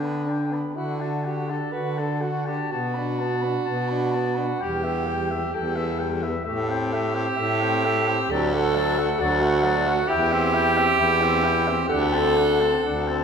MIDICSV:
0, 0, Header, 1, 5, 480
1, 0, Start_track
1, 0, Tempo, 969305
1, 1340, Time_signature, 4, 2, 24, 8
1, 2287, Tempo, 921659
1, 4207, Tempo, 902256
1, 6127, Tempo, 938967
1, 6804, End_track
2, 0, Start_track
2, 0, Title_t, "Clarinet"
2, 0, Program_c, 0, 71
2, 22, Note_on_c, 0, 83, 37
2, 144, Note_on_c, 0, 79, 41
2, 152, Note_off_c, 0, 83, 0
2, 265, Note_on_c, 0, 83, 38
2, 273, Note_off_c, 0, 79, 0
2, 377, Note_off_c, 0, 83, 0
2, 380, Note_on_c, 0, 78, 41
2, 499, Note_on_c, 0, 81, 38
2, 506, Note_off_c, 0, 78, 0
2, 614, Note_on_c, 0, 78, 40
2, 622, Note_off_c, 0, 81, 0
2, 737, Note_on_c, 0, 81, 38
2, 745, Note_off_c, 0, 78, 0
2, 851, Note_off_c, 0, 81, 0
2, 854, Note_on_c, 0, 78, 39
2, 978, Note_on_c, 0, 81, 37
2, 985, Note_off_c, 0, 78, 0
2, 1095, Note_on_c, 0, 78, 38
2, 1102, Note_off_c, 0, 81, 0
2, 1217, Note_on_c, 0, 81, 39
2, 1225, Note_off_c, 0, 78, 0
2, 1339, Note_off_c, 0, 81, 0
2, 1345, Note_on_c, 0, 81, 45
2, 1456, Note_on_c, 0, 83, 42
2, 1464, Note_off_c, 0, 81, 0
2, 1580, Note_on_c, 0, 81, 43
2, 1588, Note_off_c, 0, 83, 0
2, 1692, Note_on_c, 0, 83, 44
2, 1700, Note_off_c, 0, 81, 0
2, 1804, Note_off_c, 0, 83, 0
2, 1807, Note_on_c, 0, 81, 44
2, 1924, Note_on_c, 0, 83, 43
2, 1932, Note_off_c, 0, 81, 0
2, 2041, Note_on_c, 0, 81, 44
2, 2049, Note_off_c, 0, 83, 0
2, 2154, Note_on_c, 0, 83, 44
2, 2161, Note_off_c, 0, 81, 0
2, 2274, Note_off_c, 0, 83, 0
2, 2277, Note_on_c, 0, 79, 45
2, 2398, Note_on_c, 0, 76, 46
2, 2406, Note_off_c, 0, 79, 0
2, 2520, Note_on_c, 0, 79, 47
2, 2528, Note_off_c, 0, 76, 0
2, 2642, Note_on_c, 0, 76, 45
2, 2650, Note_off_c, 0, 79, 0
2, 2759, Note_off_c, 0, 76, 0
2, 2762, Note_on_c, 0, 79, 46
2, 2879, Note_on_c, 0, 76, 51
2, 2887, Note_off_c, 0, 79, 0
2, 3003, Note_on_c, 0, 79, 47
2, 3011, Note_off_c, 0, 76, 0
2, 3124, Note_on_c, 0, 76, 51
2, 3132, Note_off_c, 0, 79, 0
2, 3235, Note_off_c, 0, 76, 0
2, 3238, Note_on_c, 0, 76, 57
2, 3367, Note_on_c, 0, 79, 56
2, 3375, Note_off_c, 0, 76, 0
2, 3492, Note_on_c, 0, 76, 55
2, 3500, Note_off_c, 0, 79, 0
2, 3604, Note_on_c, 0, 79, 54
2, 3612, Note_off_c, 0, 76, 0
2, 3715, Note_off_c, 0, 79, 0
2, 3718, Note_on_c, 0, 76, 59
2, 3847, Note_on_c, 0, 79, 56
2, 3855, Note_off_c, 0, 76, 0
2, 3970, Note_on_c, 0, 76, 57
2, 3978, Note_off_c, 0, 79, 0
2, 4085, Note_on_c, 0, 79, 55
2, 4093, Note_off_c, 0, 76, 0
2, 4205, Note_off_c, 0, 79, 0
2, 4208, Note_on_c, 0, 74, 59
2, 4327, Note_on_c, 0, 78, 62
2, 4335, Note_off_c, 0, 74, 0
2, 4441, Note_on_c, 0, 74, 59
2, 4449, Note_off_c, 0, 78, 0
2, 4568, Note_on_c, 0, 78, 60
2, 4576, Note_off_c, 0, 74, 0
2, 4680, Note_off_c, 0, 78, 0
2, 4683, Note_on_c, 0, 74, 65
2, 4801, Note_on_c, 0, 78, 67
2, 4809, Note_off_c, 0, 74, 0
2, 4915, Note_on_c, 0, 74, 64
2, 4923, Note_off_c, 0, 78, 0
2, 5043, Note_on_c, 0, 78, 67
2, 5051, Note_off_c, 0, 74, 0
2, 5154, Note_off_c, 0, 78, 0
2, 5157, Note_on_c, 0, 79, 71
2, 5274, Note_on_c, 0, 76, 65
2, 5282, Note_off_c, 0, 79, 0
2, 5397, Note_on_c, 0, 79, 67
2, 5405, Note_off_c, 0, 76, 0
2, 5519, Note_on_c, 0, 76, 61
2, 5526, Note_off_c, 0, 79, 0
2, 5629, Note_off_c, 0, 76, 0
2, 5632, Note_on_c, 0, 79, 66
2, 5761, Note_on_c, 0, 76, 59
2, 5769, Note_off_c, 0, 79, 0
2, 5876, Note_on_c, 0, 79, 63
2, 5884, Note_off_c, 0, 76, 0
2, 5997, Note_on_c, 0, 76, 59
2, 6005, Note_off_c, 0, 79, 0
2, 6110, Note_off_c, 0, 76, 0
2, 6113, Note_on_c, 0, 78, 68
2, 6240, Note_on_c, 0, 81, 60
2, 6248, Note_off_c, 0, 78, 0
2, 6359, Note_on_c, 0, 78, 59
2, 6366, Note_off_c, 0, 81, 0
2, 6479, Note_on_c, 0, 81, 55
2, 6487, Note_off_c, 0, 78, 0
2, 6594, Note_off_c, 0, 81, 0
2, 6597, Note_on_c, 0, 78, 52
2, 6722, Note_on_c, 0, 81, 52
2, 6730, Note_off_c, 0, 78, 0
2, 6804, Note_off_c, 0, 81, 0
2, 6804, End_track
3, 0, Start_track
3, 0, Title_t, "Alto saxophone"
3, 0, Program_c, 1, 65
3, 0, Note_on_c, 1, 62, 54
3, 377, Note_on_c, 1, 64, 62
3, 384, Note_off_c, 1, 62, 0
3, 504, Note_on_c, 1, 66, 53
3, 512, Note_off_c, 1, 64, 0
3, 623, Note_on_c, 1, 67, 58
3, 630, Note_off_c, 1, 66, 0
3, 746, Note_on_c, 1, 69, 60
3, 753, Note_off_c, 1, 67, 0
3, 852, Note_on_c, 1, 71, 64
3, 859, Note_off_c, 1, 69, 0
3, 987, Note_on_c, 1, 69, 58
3, 994, Note_off_c, 1, 71, 0
3, 1093, Note_on_c, 1, 66, 57
3, 1101, Note_off_c, 1, 69, 0
3, 1217, Note_off_c, 1, 66, 0
3, 1220, Note_on_c, 1, 67, 58
3, 1342, Note_on_c, 1, 66, 76
3, 1350, Note_off_c, 1, 67, 0
3, 2290, Note_on_c, 1, 67, 83
3, 2298, Note_off_c, 1, 66, 0
3, 2768, Note_on_c, 1, 69, 79
3, 2776, Note_off_c, 1, 67, 0
3, 3107, Note_off_c, 1, 69, 0
3, 3249, Note_on_c, 1, 67, 97
3, 4207, Note_on_c, 1, 69, 108
3, 4215, Note_off_c, 1, 67, 0
3, 4679, Note_on_c, 1, 66, 99
3, 4687, Note_off_c, 1, 69, 0
3, 5150, Note_on_c, 1, 67, 126
3, 5158, Note_off_c, 1, 66, 0
3, 6111, Note_off_c, 1, 67, 0
3, 6114, Note_on_c, 1, 69, 127
3, 6804, Note_off_c, 1, 69, 0
3, 6804, End_track
4, 0, Start_track
4, 0, Title_t, "Tenor saxophone"
4, 0, Program_c, 2, 66
4, 10, Note_on_c, 2, 59, 38
4, 130, Note_on_c, 2, 62, 37
4, 137, Note_off_c, 2, 59, 0
4, 252, Note_on_c, 2, 59, 37
4, 260, Note_off_c, 2, 62, 0
4, 372, Note_off_c, 2, 59, 0
4, 376, Note_on_c, 2, 66, 42
4, 494, Note_on_c, 2, 62, 37
4, 501, Note_off_c, 2, 66, 0
4, 623, Note_on_c, 2, 66, 38
4, 631, Note_off_c, 2, 62, 0
4, 741, Note_on_c, 2, 62, 33
4, 748, Note_off_c, 2, 66, 0
4, 858, Note_off_c, 2, 62, 0
4, 862, Note_on_c, 2, 66, 36
4, 984, Note_on_c, 2, 62, 35
4, 992, Note_off_c, 2, 66, 0
4, 1110, Note_on_c, 2, 66, 39
4, 1118, Note_off_c, 2, 62, 0
4, 1230, Note_on_c, 2, 62, 36
4, 1237, Note_off_c, 2, 66, 0
4, 1345, Note_off_c, 2, 62, 0
4, 1349, Note_on_c, 2, 59, 48
4, 1465, Note_on_c, 2, 62, 42
4, 1472, Note_off_c, 2, 59, 0
4, 1588, Note_on_c, 2, 59, 42
4, 1595, Note_off_c, 2, 62, 0
4, 1704, Note_on_c, 2, 62, 37
4, 1712, Note_off_c, 2, 59, 0
4, 1821, Note_off_c, 2, 62, 0
4, 1823, Note_on_c, 2, 59, 43
4, 1938, Note_on_c, 2, 62, 42
4, 1946, Note_off_c, 2, 59, 0
4, 2057, Note_on_c, 2, 59, 42
4, 2064, Note_off_c, 2, 62, 0
4, 2168, Note_on_c, 2, 62, 42
4, 2175, Note_off_c, 2, 59, 0
4, 2281, Note_off_c, 2, 62, 0
4, 2284, Note_on_c, 2, 55, 51
4, 2405, Note_on_c, 2, 59, 45
4, 2413, Note_off_c, 2, 55, 0
4, 2525, Note_on_c, 2, 55, 43
4, 2533, Note_off_c, 2, 59, 0
4, 2649, Note_on_c, 2, 59, 42
4, 2656, Note_off_c, 2, 55, 0
4, 2762, Note_off_c, 2, 59, 0
4, 2765, Note_on_c, 2, 55, 45
4, 2889, Note_on_c, 2, 59, 46
4, 2897, Note_off_c, 2, 55, 0
4, 3008, Note_on_c, 2, 55, 49
4, 3016, Note_off_c, 2, 59, 0
4, 3127, Note_on_c, 2, 59, 51
4, 3135, Note_off_c, 2, 55, 0
4, 3239, Note_off_c, 2, 59, 0
4, 3242, Note_on_c, 2, 57, 56
4, 3371, Note_on_c, 2, 60, 52
4, 3378, Note_off_c, 2, 57, 0
4, 3489, Note_on_c, 2, 57, 55
4, 3497, Note_off_c, 2, 60, 0
4, 3606, Note_on_c, 2, 60, 49
4, 3614, Note_off_c, 2, 57, 0
4, 3719, Note_off_c, 2, 60, 0
4, 3723, Note_on_c, 2, 57, 58
4, 3849, Note_on_c, 2, 60, 57
4, 3857, Note_off_c, 2, 57, 0
4, 3970, Note_on_c, 2, 57, 53
4, 3978, Note_off_c, 2, 60, 0
4, 4089, Note_on_c, 2, 60, 52
4, 4097, Note_off_c, 2, 57, 0
4, 4202, Note_off_c, 2, 60, 0
4, 4206, Note_on_c, 2, 54, 68
4, 4330, Note_on_c, 2, 57, 60
4, 4338, Note_off_c, 2, 54, 0
4, 4450, Note_on_c, 2, 54, 60
4, 4458, Note_off_c, 2, 57, 0
4, 4569, Note_on_c, 2, 57, 54
4, 4577, Note_off_c, 2, 54, 0
4, 4685, Note_off_c, 2, 57, 0
4, 4688, Note_on_c, 2, 54, 65
4, 4801, Note_on_c, 2, 57, 62
4, 4809, Note_off_c, 2, 54, 0
4, 4912, Note_on_c, 2, 54, 70
4, 4920, Note_off_c, 2, 57, 0
4, 5037, Note_on_c, 2, 57, 62
4, 5045, Note_off_c, 2, 54, 0
4, 5152, Note_off_c, 2, 57, 0
4, 5155, Note_on_c, 2, 64, 73
4, 5281, Note_on_c, 2, 60, 65
4, 5289, Note_off_c, 2, 64, 0
4, 5399, Note_on_c, 2, 64, 66
4, 5407, Note_off_c, 2, 60, 0
4, 5523, Note_on_c, 2, 60, 58
4, 5531, Note_off_c, 2, 64, 0
4, 5633, Note_off_c, 2, 60, 0
4, 5636, Note_on_c, 2, 64, 63
4, 5754, Note_on_c, 2, 60, 61
4, 5762, Note_off_c, 2, 64, 0
4, 5875, Note_on_c, 2, 64, 62
4, 5883, Note_off_c, 2, 60, 0
4, 6003, Note_on_c, 2, 60, 57
4, 6011, Note_off_c, 2, 64, 0
4, 6122, Note_off_c, 2, 60, 0
4, 6125, Note_on_c, 2, 62, 66
4, 6237, Note_on_c, 2, 60, 57
4, 6245, Note_off_c, 2, 62, 0
4, 6356, Note_on_c, 2, 62, 56
4, 6363, Note_off_c, 2, 60, 0
4, 6481, Note_on_c, 2, 60, 49
4, 6489, Note_off_c, 2, 62, 0
4, 6594, Note_off_c, 2, 60, 0
4, 6597, Note_on_c, 2, 62, 56
4, 6723, Note_on_c, 2, 60, 49
4, 6731, Note_off_c, 2, 62, 0
4, 6804, Note_off_c, 2, 60, 0
4, 6804, End_track
5, 0, Start_track
5, 0, Title_t, "Baritone saxophone"
5, 0, Program_c, 3, 67
5, 0, Note_on_c, 3, 50, 51
5, 315, Note_off_c, 3, 50, 0
5, 372, Note_on_c, 3, 50, 50
5, 798, Note_off_c, 3, 50, 0
5, 857, Note_on_c, 3, 50, 51
5, 1284, Note_off_c, 3, 50, 0
5, 1340, Note_on_c, 3, 47, 51
5, 1763, Note_off_c, 3, 47, 0
5, 1814, Note_on_c, 3, 47, 59
5, 2230, Note_off_c, 3, 47, 0
5, 2282, Note_on_c, 3, 40, 56
5, 2714, Note_off_c, 3, 40, 0
5, 2775, Note_on_c, 3, 40, 63
5, 3196, Note_off_c, 3, 40, 0
5, 3250, Note_on_c, 3, 45, 66
5, 3670, Note_off_c, 3, 45, 0
5, 3724, Note_on_c, 3, 45, 73
5, 4150, Note_off_c, 3, 45, 0
5, 4201, Note_on_c, 3, 38, 78
5, 4630, Note_off_c, 3, 38, 0
5, 4689, Note_on_c, 3, 38, 86
5, 5108, Note_off_c, 3, 38, 0
5, 5162, Note_on_c, 3, 40, 79
5, 5586, Note_off_c, 3, 40, 0
5, 5643, Note_on_c, 3, 40, 86
5, 6069, Note_off_c, 3, 40, 0
5, 6128, Note_on_c, 3, 38, 85
5, 6544, Note_off_c, 3, 38, 0
5, 6599, Note_on_c, 3, 38, 72
5, 6804, Note_off_c, 3, 38, 0
5, 6804, End_track
0, 0, End_of_file